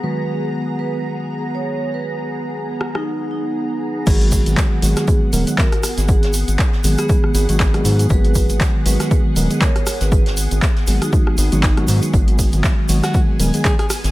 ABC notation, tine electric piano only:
X:1
M:4/4
L:1/16
Q:"Swing 16ths" 1/4=119
K:G#m
V:1 name="Tine electric piano" clef=bass
[D,F,G,B,F]16- | [D,F,G,B,F]16 | [D,F,G,B,F]6 [D,F,G,B,F]4 [D,F,G,B,A] [D,F,G,B,G]2 z3 | z6 [D,F,G,B,G]4 z [D,F,G,B,F] z [D,F,G,B,F]3- |
[D,F,G,B,F]6 [D,F,G,B,F]4 [D,F,G,B,A] [D,F,G,B,G]2 z3 | z6 [D,F,G,B,G]4 z [D,F,G,B,F] z [D,F,G,B,F]3- | [D,F,G,B,F]6 [D,F,G,B,F]4 [D,F,G,B,A] [D,F,G,B,G]2 z3 |]